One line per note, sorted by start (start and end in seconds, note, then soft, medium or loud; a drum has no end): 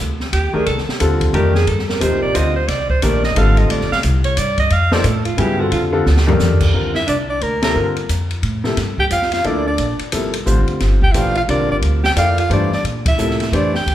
0.00 0.32 D2 medium
0.20 snare soft
0.33 0.52 D#2 medium
0.33 0.55 G4 medium
0.33 ride medium
0.53 0.65 D#3 medium
0.53 0.65 A3 medium
0.53 0.65 D4 medium
0.53 0.65 G4 medium
0.53 0.66 G#4 medium
0.53 0.65 A#4 medium
0.53 muted upright bass stroke soft
0.66 0.86 C2 medium
0.66 0.79 A4 medium
0.66 ride medium
0.78 snare soft
0.87 muted upright bass stroke soft
0.87 snare medium
1.00 1.33 D#2 medium
1.00 1.32 D3 medium
1.00 1.32 G3 medium
1.00 1.32 C4 medium
1.00 1.33 F4 medium
1.00 1.33 A4 medium
1.00 hi-hat pedal medium
1.00 ride medium
1.21 kick medium
1.21 ride medium
1.33 1.66 F2 loud
1.33 1.53 D#3 medium
1.33 1.53 A3 medium
1.33 1.53 D4 medium
1.33 1.53 G4 medium
1.33 1.54 G4 medium
1.33 1.53 A#4 medium
1.33 ride medium
1.55 1.70 G#4 medium
1.55 snare soft
1.67 2.00 G2 medium
1.67 1.88 A4 medium
1.67 ride medium
1.79 snare soft
1.89 2.03 A#4 medium
1.89 snare soft
2.00 2.12 D#2 medium
2.00 2.33 C3 medium
2.00 2.33 F3 medium
2.00 2.33 A#3 medium
2.00 2.33 D#4 medium
2.00 2.33 G4 medium
2.00 2.22 C5 medium
2.00 hi-hat pedal soft
2.00 ride medium
2.12 2.23 C2 medium
2.22 2.34 A1 medium
2.22 2.38 D5 loud
2.34 2.67 D2 medium
2.34 2.53 D3 medium
2.34 2.54 G3 medium
2.34 2.54 C4 medium
2.34 2.54 F4 medium
2.34 2.54 C5 medium
2.34 2.55 D#5 loud
2.34 hi-hat pedal medium
2.34 ride medium
2.56 2.70 C5 medium
2.68 3.01 C2 medium
2.68 2.89 D5 medium
2.68 snare soft
2.68 ride medium
2.90 3.04 C5 medium
2.90 kick medium
3.02 3.35 A#1 medium
3.02 3.21 D#3 medium
3.02 3.21 A3 medium
3.02 3.21 D4 medium
3.02 3.21 G4 medium
3.02 3.21 A#4 medium
3.02 3.24 D5 medium
3.02 hi-hat pedal medium
3.02 ride medium
3.23 3.40 D#5 loud
3.23 snare soft
3.35 3.68 G#1 medium
3.35 3.87 D3 medium
3.35 3.87 G3 medium
3.35 3.87 C4 medium
3.35 3.87 F4 medium
3.35 3.87 A4 medium
3.35 3.60 F5 loud
3.35 ride medium
3.57 3.73 D#5 medium
3.57 ride soft
3.69 3.81 A1 medium
3.69 3.92 D5 medium
3.69 ride medium
3.81 3.91 F1 medium
3.81 snare soft
3.92 4.02 D1 medium
3.92 3.99 F5 medium
3.92 snare soft
4.03 4.36 C2 loud
4.03 hi-hat pedal medium
4.03 ride medium
4.24 4.40 C#5 medium
4.24 ride soft
4.37 4.70 G2 medium
4.37 4.59 D5 loud
4.37 hi-hat pedal soft
4.37 ride medium
4.58 4.74 D#5 loud
4.58 kick medium
4.58 ride soft
4.70 5.03 F2 medium
4.70 4.95 F5 loud
4.70 ride medium
4.92 5.03 F3 medium
4.92 5.03 A#3 medium
4.92 5.03 D#4 medium
4.92 5.03 A4 medium
4.92 5.03 C5 medium
4.92 5.08 D5 loud
4.92 snare medium
5.04 5.37 A2 loud
5.04 5.25 A4 medium
5.04 hi-hat pedal medium
5.04 ride medium
5.25 5.40 F4 medium
5.25 ride soft
5.37 5.71 G2 loud
5.37 5.57 C#3 medium
5.37 5.57 F#3 medium
5.37 5.57 B3 medium
5.37 5.57 E4 medium
5.37 5.61 G4 medium
5.37 5.57 G#4 medium
5.37 ride medium
5.60 5.89 D3 medium
5.60 5.89 G3 medium
5.60 5.89 C4 medium
5.60 5.89 F4 medium
5.60 5.72 F#4 medium
5.60 5.89 A4 medium
5.72 6.04 F2 medium
5.72 5.85 F4 medium
5.72 ride medium
5.92 6.04 D3 medium
5.92 6.04 G3 medium
5.92 6.04 C4 medium
5.92 6.04 F4 medium
5.92 6.04 A4 medium
6.06 6.39 D2 medium
6.06 snare medium
6.17 snare medium
6.27 6.71 D#3 medium
6.27 6.71 D4 medium
6.27 6.71 G4 medium
6.27 6.71 A4 medium
6.27 6.71 A#4 medium
6.27 floor tom medium
6.39 6.72 F2 loud
6.39 snare medium
6.39 hi-hat pedal medium
6.60 kick medium
6.60 crash medium
6.73 7.06 G2 medium
6.73 6.93 D3 medium
6.73 6.93 G3 soft
6.73 6.93 C4 soft
6.73 6.93 F4 soft
6.73 6.93 A#4 medium
6.94 7.06 E4 medium
6.94 7.07 E5 medium
6.94 snare soft
7.07 7.40 C2 medium
7.07 7.17 D4 medium
7.07 7.18 D5 medium
7.07 hi-hat pedal medium
7.07 ride medium
7.28 7.43 D4 medium
7.28 7.44 D5 medium
7.41 7.74 D2 medium
7.41 7.62 A#3 medium
7.41 7.63 A#4 medium
7.41 ride soft
7.62 7.74 C3 medium
7.62 7.73 F3 medium
7.62 7.74 A#3 medium
7.62 7.94 A#3 medium
7.62 7.74 E4 medium
7.62 7.74 A4 medium
7.62 7.95 A#4 medium
7.62 snare medium
7.62 ride medium
7.75 8.08 G2 medium
7.75 7.94 D3 medium
7.75 7.94 G3 medium
7.75 7.94 C4 medium
7.75 7.94 F4 medium
7.75 7.94 A#4 medium
7.96 ride soft
8.09 8.42 F2 medium
8.09 hi-hat pedal medium
8.09 ride medium
8.31 ride soft
8.43 8.75 A2 medium
8.43 ride medium
8.64 8.75 C3 medium
8.64 8.75 F3 medium
8.64 8.75 A#3 medium
8.64 8.75 E4 medium
8.64 8.76 A4 medium
8.64 snare soft
8.77 9.10 G2 medium
8.77 snare soft
8.77 ride medium
8.98 9.05 G4 medium
8.98 9.05 G5 medium
8.98 kick medium
9.10 9.43 F2 medium
9.10 9.31 F4 medium
9.10 9.31 F5 loud
9.10 hi-hat pedal medium
9.10 ride medium
9.22 snare soft
9.32 9.46 F4 medium
9.32 9.48 F5 medium
9.32 snare soft
9.32 ride soft
9.44 9.77 D2 medium
9.44 9.63 F3 medium
9.44 9.64 A#3 medium
9.44 9.65 D4 medium
9.44 9.64 E4 medium
9.44 9.64 A4 medium
9.44 9.64 D5 medium
9.44 9.67 D5 medium
9.44 ride soft
9.66 9.97 D4 medium
9.66 9.98 D5 medium
9.78 9.98 A#1 medium
9.78 ride medium
9.99 muted upright bass stroke soft
9.99 ride soft
10.12 10.45 G1 medium
10.12 10.31 C3 medium
10.12 10.31 F3 medium
10.12 10.31 A#3 medium
10.12 10.32 E4 medium
10.12 10.31 A4 medium
10.12 hi-hat pedal soft
10.12 ride medium
10.33 ride medium
10.46 10.58 A1 medium
10.46 10.97 D3 medium
10.46 10.97 G3 medium
10.46 10.97 C4 medium
10.46 10.97 F4 medium
10.46 10.97 C5 medium
10.46 hi-hat pedal soft
10.58 10.68 G1 soft
10.68 10.79 F1 medium
10.68 ride soft
10.80 11.13 G1 medium
10.80 snare soft
10.80 ride medium
11.02 11.14 G4 medium
11.02 11.13 G5 medium
11.02 kick medium
11.12 11.47 A#1 medium
11.12 11.33 E3 medium
11.12 11.33 A3 medium
11.12 11.33 D4 medium
11.12 11.17 E4 medium
11.12 11.33 G4 medium
11.12 11.34 C5 medium
11.12 11.18 E5 medium
11.12 hi-hat pedal medium
11.12 ride medium
11.16 11.35 F4 medium
11.16 11.37 F5 medium
11.35 11.41 F4 medium
11.35 11.43 F5 medium
11.35 ride soft
11.48 11.59 C2 medium
11.48 11.99 D3 medium
11.48 11.99 G3 medium
11.48 11.99 C4 medium
11.48 11.69 D4 medium
11.48 11.99 F4 medium
11.48 12.00 A#4 medium
11.48 11.69 D5 loud
11.48 ride medium
11.59 11.70 A#1 soft
11.70 11.81 G1 medium
11.70 11.76 D4 medium
11.70 11.77 D5 medium
11.82 12.15 D2 medium
11.82 ride medium
12.04 12.09 G4 medium
12.04 12.11 G5 medium
12.04 snare medium
12.16 12.49 F2 medium
12.16 12.35 F3 medium
12.16 12.35 A#3 medium
12.16 12.35 E4 medium
12.16 12.37 F4 medium
12.16 12.35 A4 medium
12.16 12.36 D5 medium
12.16 12.37 F5 medium
12.16 hi-hat pedal medium
12.16 ride medium
12.38 12.50 F4 medium
12.38 12.51 F5 medium
12.38 ride soft
12.50 12.83 G2 medium
12.50 12.69 E3 medium
12.50 12.69 A3 medium
12.50 12.69 D4 medium
12.50 12.71 D4 medium
12.50 12.69 G4 medium
12.50 12.69 C5 medium
12.50 12.72 D5 medium
12.50 ride medium
12.72 12.84 D4 medium
12.72 12.85 D5 medium
12.72 snare soft
12.84 13.17 A#2 medium
12.84 ride medium
13.06 13.50 E4 medium
13.06 13.50 E5 medium
13.06 kick medium
13.06 ride medium
13.18 13.51 A2 medium
13.18 13.37 C3 medium
13.18 13.38 F3 medium
13.18 13.38 A#3 medium
13.18 13.38 E4 medium
13.18 13.38 A4 medium
13.18 hi-hat pedal medium
13.30 snare soft
13.40 snare soft
13.40 ride soft
13.52 13.85 F2 medium
13.52 13.72 E3 medium
13.52 13.72 A3 medium
13.52 13.72 D4 medium
13.52 13.73 D4 medium
13.52 13.72 G4 medium
13.52 13.72 C5 medium
13.52 13.74 D5 medium
13.52 ride medium
13.74 13.95 G4 medium
13.74 13.95 G5 medium
13.74 snare soft
13.86 13.95 D2 medium
13.86 ride medium